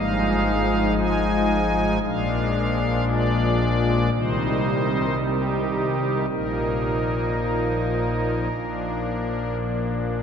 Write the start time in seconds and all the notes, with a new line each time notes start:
Already playing: G#1 G#2 F3 G#3 D#4 F5
0.97 G#5
2.03 A#1 A#2 F3 G#3 D4 F5
3.08 D5
4.12 C2 C3 D#3 G3 D#4 C5
5.20 G4
6.28 A#1 A#2 F3 A#3 D#4 A#4
8.51 A#1 A#2 F3 A#3 D4